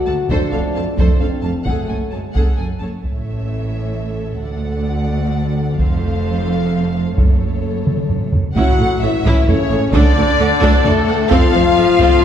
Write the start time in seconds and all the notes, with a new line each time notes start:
Already playing: F#3 A3 F#4
0.06 D2 A4 F#5 A5
0.29 F1 F2 F3 D4 A4 C5, taiko
0.52 F1 F2 A4 C5 F5
0.73 F1 F2 A4 F5 A5
0.97 F1 F2 A4 C5, taiko
1.20 F1 F2 C4 A4 C5 F5
1.42 F1 F2 A4 F5 A5
1.64 F#1 F#2 F#3 A3 C#4 G#4 A4 F#5, taiko
1.88 F#1 F#2 A4 G#5
2.11 F#1 F#2 G#3 A4 C#5 A5
2.33 F#1 F#2 G#4 A4 F#5, taiko
2.56 F#1 F#2 A4 G#5
2.80 F#1 F#2 A4 C#5 A5
3.02 A1 A2 A3 C#4 A4 C#5 E5, taiko
4.40 D2 F#4 D5 F#5
5.78 F1 F2 A3 A4 C5 F5, taiko
7.16 F#1 F#2 A4 C#5, taiko
7.87 taiko mid
8.09 taiko low-mid
8.33 taiko low
8.54 A1 A2 F#3 C#4 E4 F#4 F#5, taiko
8.78 A1 A2 E4 A4
9.01 A1 A2 E3 E4 A4 C#5 E5
9.23 A1 A2 C#4 E4, taiko
9.46 A1 A2 C#3 E4 A4 C#5, taiko low
9.50 C#4
9.69 A1 A2 A4 C#5
9.92 D2 D3 D4 A4 D5, taiko
10.16 D2 F#4 D5
10.39 D2 A4 F#5
10.61 D2 D4 A4, taiko
10.84 D2 A2 A3 F#4 A4 D5, taiko low
11.08 D2 A4 F#5
11.30 F1 F2 F3 C4 F4 A4 F5, taiko
11.53 F1 F2 F4 C5
11.76 F1 F2 A4 F5
11.99 F1 F2 C4 A4, taiko